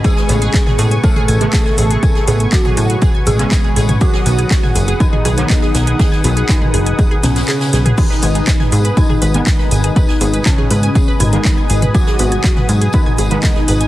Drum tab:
CC |----------------|----------------|----------------|----------------|
HH |x-oxx-oxx-oxx-ox|x-oxx-oxx-oxx-ox|x-oxx-oxx-oxx-ox|x-oxx-oxx-oxx-ox|
TB |x-x-x-x-x-x-x-x-|x-x-x-x-x-x-x-x-|x-x-x-x-x-x-x-x-|x-x-x---x-xxxxx-|
CP |----x-------x---|----x-------x---|----x-------x---|----x-------x---|
SD |-o--oo------oo--|-o--o-------o---|-o--oo------ooo-|oo--o-----ooooo-|
T2 |-----o---o------|-----o----o----o|-----o---o------|-----o----o----o|
BD |o---o---o---o---|o---o---o---o---|o---o---o---o---|o---o---o-------|

CC |x---------------|----------------|----------------|
HH |x-oxx-oxx-oxx-ox|x-oxx-oxx-oxx-ox|x-oxx-oxx-oxx-ox|
TB |x-x-x-x-x-x-x-x-|x-x-x-x-x-x-x-x-|x-x-x-x-x-x-x-x-|
CP |----x-------x---|----x-------x---|----x-------x---|
SD |-o--oo------oo--|-o--o-------o---|-o--oo------oo--|
T2 |-----o---o------|-----o----o----o|-----o---o------|
BD |o---o---o---o---|o---o---o---o---|o---o---o---o---|